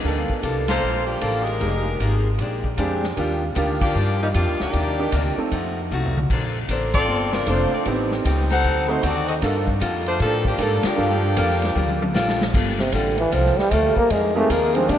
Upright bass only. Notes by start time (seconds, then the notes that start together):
0.04 D2
0.29 muted upright bass stroke
0.43 C2
0.83 A#1
1.21 A1
1.61 F1
2.00 G#1
2.38 A#1
2.78 F2
3.17 D#2
3.56 D2
3.95 G2
4.35 F2
4.48 D#2
4.61 D2
4.74 D#2
5.12 D2
5.37 muted upright bass stroke
5.52 F2
5.91 C2
6.30 A#1
6.69 A1
7.08 G1
7.47 F1
7.72 muted upright bass stroke
7.86 A1
8.25 C#2
8.64 D2
9.03 D#2
9.42 G2
9.81 F2
10.20 A2
10.58 G#2
10.84 muted upright bass stroke
10.98 G2
11.37 F2
11.75 D2
12.13 A#1
12.54 G1
12.93 A1
13.32 C2
13.57 muted upright bass stroke
13.71 D2
13.96 muted upright bass stroke
14.10 F2
14.50 D#2
14.89 A#2